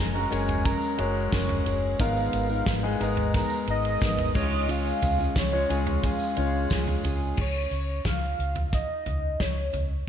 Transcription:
Already playing: F#1 G#3 C#4 F#4 G#4 A#4 A#5
0.14 G#3 C#4 F#4 A#4
0.30 F#1 F#3 G#3 C#4 F#4 G#4 A#4 C#5 G#5, ride, tambourine
0.48 floor tom, ride, tambourine
0.64 F#3 C#4 G#4 A#4 A#5, kick, ride, tambourine
0.82 tambourine
0.98 F#1 G#3 C#4 F#4 A#4 C#5, ride
1.32 F#1 F#3 C#4 G#4 A#4, kick, snare, ride, tambourine
1.49 floor tom
1.65 F#1 F#3 C#4 G#4 A#4, ride, tambourine
1.99 G#1 G#2 D#3 G#3 B3 D#4 A#4 F5, kick, ride, tambourine
2.17 tambourine
2.33 G#1, ride, tambourine
2.49 G#3 B3 D#4 A#4, tambourine
2.66 G#1, kick, snare, ride, tambourine
2.83 G#3 B3 D#4 G#4
2.99 G#1 G#3 B3 D#4 A#4 D#5, ride, tambourine
3.17 floor tom
3.34 G#3 B3 D#4 A#4 A#5, kick, snare, ride, tambourine
3.50 tambourine
3.67 G#1 D#5, ride
3.85 ride
4.01 G#1 G#3 B3 D#4 A#4, kick, snare, ride, tambourine
4.18 floor tom, tambourine
4.34 C#2 C#3 G#3 C#4 D#4 F4 G#4 C#5, kick, tambourine, crash
4.42 F4
4.68 C#3 G#3 C#4 F4 G#4 F5, ride, tambourine
4.86 tambourine
5.02 C#2, floor tom, ride, tambourine
5.19 C#4 F4 G#4, tambourine
5.36 C#2 C#5, kick, snare, ride, tambourine
5.52 G#3 C#4 F4 C#5
5.69 C#2 G#3 C#4 F4 G#4, ride, tambourine
5.87 floor tom, ride
6.03 G#3 C#4 F4 G#4 F5, kick, ride, tambourine
6.19 tambourine
6.36 C#2 G#3 C#4 F4 C#5, ride
6.70 C#2 G#3 C#4 F4 G#4, kick, snare, ride, tambourine
6.87 floor tom, tambourine
7.04 C#2 G#3 C#4 F4 G#4, ride, tambourine
7.37 C#2 C#5, kick, crash
7.71 C#2, closed hi-hat
8.05 C#2 F5, kick, snare, closed hi-hat
8.39 C#2, closed hi-hat
8.56 floor tom
8.72 D#5, kick, snare, closed hi-hat
9.06 C#2, closed hi-hat, floor tom
9.40 C#2 C#5, kick, snare, closed hi-hat
9.73 C#2, closed hi-hat, floor tom

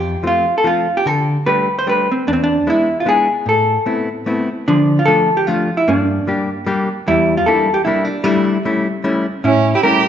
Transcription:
Already playing: F2 G4
0.23 F3 A3 C4 F4
0.27 F4
0.58 A4
0.64 F3 A3 C4 F4
0.97 G4
1.06 D3 A4
1.46 G3 A3 D4 G4 B4
1.79 C5
1.87 G3 A3 D4 G4 B4
2.12 C4
2.28 E2 D4
2.33 C4
2.44 D4
2.67 G#3 B3 D4 E4
3.00 F4
3.05 G#3 B3 D4 E4 G#4
3.46 A2 A4
3.86 A3 B3 C4 E4
4.26 A3 B3 C4 E4
4.68 D3 F3 D4
4.99 F4
5.06 F3 A3 D4 F4 A4
5.37 G4
5.47 F3 A3 D4 F4
5.77 E4
5.88 G2 A#3 D4
6.27 G3 A#3 D4 G4
6.66 G3 A#3 D4 G4
7.08 E2 G3 E4
7.37 F4
7.46 G3 A#3 D4 E4 A4
7.74 G4
7.85 G3 A#3 D4 E4
8.05 D4
8.24 G3 A3 D4 E4
8.65 G3 A3 C#4 E4
9.04 G3 A3 C#4 E4
9.44 A2 C#4 E4
9.75 E4 G4
9.83 G3 A3 C#4 E4 G4 A#4

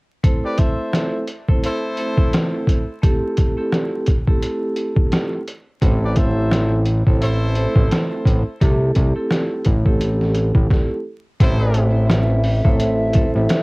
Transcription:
0.23 A3 C4 E4 A4 C5, kick, closed hi-hat
0.44 G4 B4 D5
0.58 A4 C5 E5, kick, closed hi-hat
0.93 cross-stick, snare, closed hi-hat
1.27 closed hi-hat
1.48 A3 C4 E4 A4 C5, kick
1.64 E4 A4 C5, closed hi-hat
1.97 A3 C4 E4 A4 C5, closed hi-hat
2.17 kick
2.33 cross-stick, snare, closed hi-hat
2.67 kick, closed hi-hat
3.02 A3 C4 E4 G4 A4, kick, closed hi-hat
3.37 kick, closed hi-hat
3.57 A3 C4 E4 G4 A4
3.72 cross-stick, snare, closed hi-hat
4.06 kick, closed hi-hat
4.27 A3 C4 E4 G4 A4, kick
4.43 closed hi-hat
4.76 closed hi-hat
4.96 kick
5.12 cross-stick, snare, closed hi-hat
5.48 closed hi-hat
5.81 A1 A3 C4 E4 A4 C5, kick, closed hi-hat
6.03 G4 B4 D5
6.16 A4 C5 E5, kick, closed hi-hat
6.51 cross-stick, snare, closed hi-hat
6.85 closed hi-hat
7.06 A1 A3 C4 E4 A4 C5, kick
7.21 E4 A4 C5, closed hi-hat
7.55 A3 C4 E4 A4 C5, closed hi-hat
7.76 A1, kick
7.91 cross-stick, snare, closed hi-hat
8.25 A1, kick, closed hi-hat
8.60 C2 A3 C4 E4 G4 A4, kick, closed hi-hat
8.95 C2, kick, closed hi-hat
9.15 A3 C4 E4 G4 A4
9.31 cross-stick, snare, closed hi-hat
9.65 A1, kick, closed hi-hat
9.85 A3 C4 E4 G4 A4, kick
10.01 closed hi-hat
10.21 snare
10.34 closed hi-hat
10.55 A1, kick
10.70 kick, snare
11.40 A1 A3 C4 E4 A4 C5, kick, closed hi-hat
11.60 D5
11.74 E5, closed hi-hat
12.10 cross-stick, snare, closed hi-hat
12.44 open hi-hat
12.64 A1 A3 C4 E4 A4 C5, kick
12.79 E5, closed hi-hat
13.13 A3 C4 E4 A4 C5, kick, closed hi-hat
13.36 A1 E5
13.49 cross-stick, snare, closed hi-hat

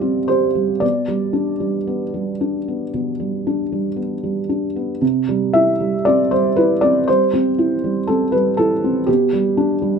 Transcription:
Already playing: G3 G4 D5
0.00 C4
0.28 G4 C5
0.55 G3
0.80 B2 D5
1.08 G3
1.33 D4
1.60 G3
1.87 B3
2.14 G3
2.41 D4
2.68 B3
2.94 B2
3.20 G3
3.47 D4
3.72 G3
3.96 B3
4.23 G3
4.49 D4
4.76 B3
5.02 C3
5.29 G3
5.53 E4 E5
5.80 G3
6.05 C4 D5
6.31 G3 C5
6.56 E4 B4
6.81 C4 D5
7.08 G3 C5
7.33 C4
7.59 E4
7.84 G3
8.07 C4 A4
8.32 G3 B4
8.57 E4 A4
8.84 C4
9.07 B2 G4
9.33 G3
9.57 D4
9.82 G3

